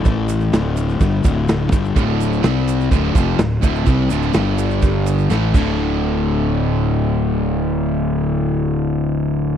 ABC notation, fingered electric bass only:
X:1
M:4/4
L:1/8
Q:1/4=126
K:G
V:1 name="Fingered electric bass" clef=bass
A,,,2 D,,,2 G,,, D,,,2 G,,, | D,,,2 C,,2 D,,, =F,,, D,,, D,,, | C,, D,,, G,,,4 A,,, D,,,- | D,,,8- |
D,,,8 |]